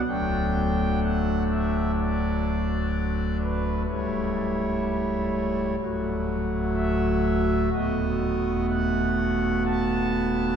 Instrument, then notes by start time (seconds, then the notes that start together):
pipe organ
0.08 D1 D2 F#3 A3 D4 G5
1.03 F#5
1.52 E5
1.98 D5
3.42 B4
3.89 C#1 C#2 G3 A3 E4 C#5
5.81 D1 D2 F#3 A3 F#4
6.76 E5
7.73 D#1 D#2 A3 B3 F#4 D#5
8.70 F#5
9.66 A5